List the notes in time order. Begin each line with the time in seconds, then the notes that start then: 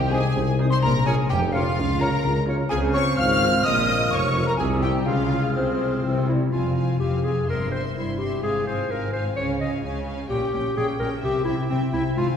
Already playing: C2 C3 G#3 D#4 G4 G#4 C5 G5
0.12 G#3 C4 D#4 G#4 C5 G#5 D#6
0.36 C2 C3 D#4
0.59 C4 D#4 C5 D#6
0.70 C5 C6
0.81 A#1 A#2 A#4 A#5
1.06 G#3 C#4 F4 G#4 C#5 G#5 F6
1.29 F1 F2 F4 G4 G5
1.52 C#4 F4 G#4 C#5 F5 F6
1.78 C#2 C#3
2.00 A#3 C#4 F4 A#4 C#5 A#5 F6
2.24 C#2 C#3 F4
2.47 C#4 F4 C#5 F6
2.69 C#2 C#3 C4 F4 G#4 C5 G#5 F6
2.94 G#3 C4 F4 C#5 C#6
3.17 G#1 G#2 F4 F5 F6
3.42 C4 F4 C5
3.64 A#1 A#2 A#3 A#4 D#5 D#6
3.88 C#4 F4
4.11 F1 F2 F4 C#5 C#6
4.36 C#4 F4 A#4
4.47 A#4 A#5
4.57 C2 C3 G3 E4 G4 G#4 G#5 E6
4.81 C4 E4 G4 G5
5.06 C#2 C#3 G#3 F4 G#4 F5 F6
5.30 G#3 F4 G#4
5.54 C2 C3 G#3 C4 F4 C5
5.80 G#3 F4 G#4
6.03 C2 C3 E3 C4 E6
6.28 G3 E4 G4
6.52 F1 F2 C4 F4 F5 G#5
6.70 C3
6.76 C4 F5 G#5
6.86 F4
6.99 F1 F2 C4 G4 G#4 F5 G#5
7.18 C5
7.24 C4 G#4 F5 G#5
7.47 G1 G2 C4 A#4 E5 C6
7.66 G3
7.72 C4 C5 E5 C6
7.82 E4
7.96 G1 G2 C4 E4 C5 E5 C6
8.12 E4
8.18 C4 G4 E5 C6
8.29 C5
8.43 G#1 G#2 C4 G#4 F5 G#5
8.60 G#3
8.67 C4 C5 F5 G#5
8.76 F4
8.89 G#1 G#2 C4 A#4 C5 F5 G#5
9.08 F4
9.13 C4 C5 F5 G#5
9.24 C5
9.36 C#2 C#3 C#4 C#5 F5 G#5
9.54 C#4
9.60 C#4 D#5 F5 G#5
9.70 F4
9.83 C#2 C#3 C#4 C#5 F5 G#5
10.01 G#4
10.06 C#4 F5 G#5
10.17 C#5
10.29 A#1 A#2 C#4 G4 G5
10.48 A#3
10.53 A#1 A#2 C#4 G5
10.76 A#1 A#2 C#4 G#4 C#5 G5
10.94 G4
10.99 A#1 A#2 C#4 A#4 G5
11.09 C#5
11.22 C2 C3 C4 G4 E5 G5
11.39 C4
11.45 C2 C3 C4 E4 E5 G5
11.56 E4
11.67 C2 C3 C4 E5 G5
11.71 C5
11.87 G4
11.92 C2 C3 C4 E4 E5 G5
12.02 C5
12.17 G#1 G#2 C4 F4 F5 G#5